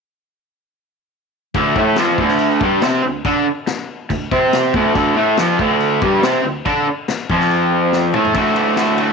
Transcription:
1.54 D2 D3, kick, crash
1.76 A2 A3, kick
1.96 F2 F3, snare, crash
2.18 D2 D3, kick
2.28 snare
2.39 crash
2.61 G2 G3, kick
2.82 C3 C4, snare, crash
3.04 D2
3.25 D3 D4, kick, crash
3.47 muted overdriven electric guitar stroke
3.67 muted overdriven electric guitar stroke, snare, crash
4.10 D2, kick, crash
4.31 C3 C4, kick
4.53 snare, crash
4.74 D2 D3, kick
4.94 D2 D3, kick, crash
5.16 A2 A3
5.37 F2 F3, snare, crash
5.59 D2 D3, kick
5.80 crash
6.02 G2 G3, kick
6.23 C3 C4, snare, crash
6.44 D2
6.66 D3 D4, kick, crash
6.87 muted overdriven electric guitar stroke
7.08 muted overdriven electric guitar stroke, snare, crash
7.30 F2 F3, kick
7.40 snare
7.51 crash
7.92 snare
8.14 A2 A3, mid tom
8.25 floor tom
8.33 D2 A2 D3 A3, kick, ride
8.38 F#4
8.55 A3 F#4, ride
8.60 D3
8.76 A2 D3 A3, snare, ride
8.81 F#4
8.98 A3 F#4, ride
9.02 D3

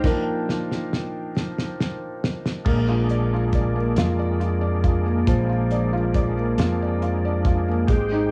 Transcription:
Already playing: D#4 A#4 C5 F5 G5
0.04 F3 A#3 D4 A#4, kick, snare, crash
0.49 snare
0.71 snare
0.93 snare
1.37 snare
1.58 snare
1.80 snare
2.24 snare
2.46 snare
2.65 A#1 G#3 A#3 D4, kick, crash
2.89 F4
3.09 D5, closed hi-hat
3.34 F4
3.53 D5, kick, closed hi-hat
3.76 A#3
3.96 F2 F4, snare, closed hi-hat
4.19 D5
4.40 F4, closed hi-hat
4.61 D5
4.84 F4, kick, closed hi-hat
5.06 A#3
5.27 A#1 F3, kick, closed hi-hat
5.49 F4
5.71 D5, closed hi-hat
5.93 F4
6.14 D5, kick, closed hi-hat
6.37 A#3
6.58 F2 F4, snare, closed hi-hat
6.82 D5
7.02 F4, closed hi-hat
7.25 D5
7.45 F4, kick, closed hi-hat
7.68 A#3
7.87 G#1 G#3 C4 G4, kick, closed hi-hat
8.12 D#4

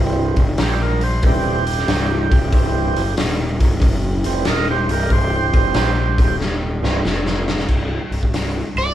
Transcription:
Already playing: C1 E3 G3 C4
0.36 F1, kick, open hi-hat
0.58 A#1, snare, open hi-hat
0.62 G4
0.82 A#4
1.01 C5, open hi-hat
1.23 D#1 E3 G3 C4, kick, open hi-hat
1.27 G4
1.67 open hi-hat
1.79 snare
1.88 C1, snare, open hi-hat
2.31 C1, kick, open hi-hat
2.52 C1 E3 G3 C4, kick, open hi-hat
2.96 F#1, open hi-hat
3.17 D#1, snare, open hi-hat
3.60 C1, kick, open hi-hat
3.81 F#1, kick, open hi-hat
4.24 F1 E3 G3 C4, open hi-hat
4.45 D#1 A#4 D5, snare, open hi-hat
4.49 D#5
4.70 G4 C5
4.89 C1 G4 A#4, open hi-hat
5.10 C1 G4 C5, kick, open hi-hat
5.53 F1 E3 G3 C4, kick, open hi-hat
5.74 A#1, snare, open hi-hat
6.18 D#1, kick, open hi-hat
6.40 snare
6.82 C1 E3 G3 C4, snare
7.04 F1, snare
7.26 snare
7.48 snare
7.59 snare
7.68 C1, kick, crash
8.11 C1, open hi-hat
8.23 kick
8.32 C1, snare, open hi-hat
8.76 C1 D5, open hi-hat

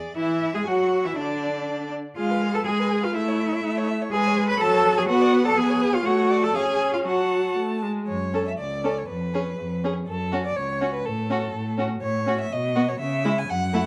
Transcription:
Already playing: G#4 D5
0.17 E3 E4 E5
0.55 G#3 G#4 G#5
0.67 F#3 F#4 F#5
1.05 E3 E4 E5
1.17 D3 D4 D5
2.16 G#3 F4 G#4 F5
2.30 B4
2.42 G#4
2.54 A4 B4 A5
2.66 G#3 G#4 G#5
2.79 B4
2.91 G#4
3.03 F4 B4 F5
3.14 A3 E4 E5
3.28 C#5
3.40 E5
3.52 C#5
3.64 A3 E5
3.77 C#5
3.89 E5
4.02 C#5
4.12 G#3 G#4 B4 G#5
4.27 C#5
4.38 B4
4.49 B4 C#5 B5
4.60 F#3 A4 A5
4.74 C#5
4.86 A4
4.98 G#4 C#5 G#5
5.08 B3 F#4 B4 F#5
5.21 D5
5.33 B4
5.45 A4 D5 A5
5.57 B3 G#4 B4 G#5
5.70 C#5
5.81 B4
5.93 F4 C#5 F5
6.06 A3 F#4 C#5 F#5
6.30 D5
6.43 A4 A5
6.55 C#4 G#4 F5 G#5
6.81 G#5
6.93 F4 F5
7.05 F#3 F#4 F#5 A5
7.58 A3
7.83 G#3
8.08 F#2 C#5
8.34 C#4 A4
8.47 E5
8.58 C#2 D5
8.84 C#4 A4
8.98 C#5
9.08 F2 B4
9.34 C#4 G#4
9.58 F2
9.84 C#4 G#4
10.07 F#2 A4
10.32 C#4 F#4
10.46 D5
10.56 C#2 C#5
10.81 C#4 F#4
10.94 B4
11.05 A2 A4
11.30 C#4 F#4
11.53 A2
11.78 C#4 F#4
12.01 A2 C#5
12.27 C#4 F#4
12.40 E5
12.51 B2 D#5
12.76 B3 F#4
12.89 C#5
13.00 C#3 E5
13.25 G#3 E4
13.38 G#5
13.49 F#2 F#5
13.73 A3 E4

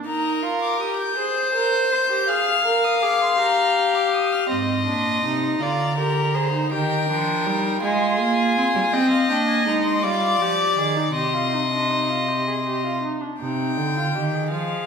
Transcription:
0.06 D#4 A#4 A#5
0.42 F4
0.62 D6
0.80 G4 D#6
0.98 G6
1.17 G#4 C5
1.54 A#4
1.91 C5
2.10 G4
2.29 G#4 F5 F6
2.65 A#4
2.84 D#6
3.01 G#4 D6
3.22 C6
3.38 G4 A#5
3.95 D6
4.13 D#6
4.32 F6
4.49 G#2 C4 D#5 C6
4.86 A#2 D4
5.24 C3 D#4
5.60 D3 F4 D5 A#5
5.97 G4 A#4
6.34 G#4 C5
6.53 D#4
6.71 D#3 G4 A#4 G5
7.09 F3 D4
7.46 G3 D#4
7.82 G#3 F4 G#4 G#5
8.19 A#3
8.57 C4
8.75 G3
8.92 C4 D#5 G5
9.11 F5
9.29 A#3 D4 G5
9.48 G#5
9.66 G#3 D#4 A#5
9.85 C6
10.02 G3 F4 D5 D6
10.40 F3 G4
10.78 D#3 G#4
10.96 D#4
11.14 C3 G4 D#5 C6
11.33 F4
11.52 D#4
11.72 D4
11.90 D#4
12.09 F4
12.28 G4
12.47 G#4
12.66 G4
12.84 F4
13.02 D#4
13.21 D4
13.41 C3 D#4 G5
13.77 D3
13.96 F4
14.15 D#3 G4
14.34 G#4
14.52 F3 F5

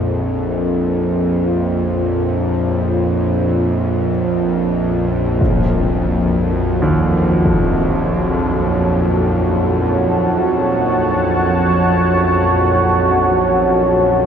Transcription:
Already playing: A#1 F2 A#3 D#4 F4 C5 C#5
5.41 F#4, impact
6.25 A5
6.74 C#5
6.82 D#2
7.45 impact
7.68 F#5

